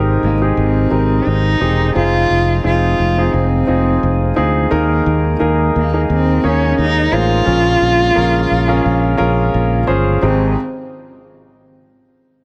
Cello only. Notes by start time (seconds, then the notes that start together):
0.24 A#3
0.58 C4
1.27 D#4
1.96 F4
2.66 F4
3.34 C4
5.77 A#3
6.11 C4
6.45 C#4
6.80 D#4
7.14 F4
10.24 C4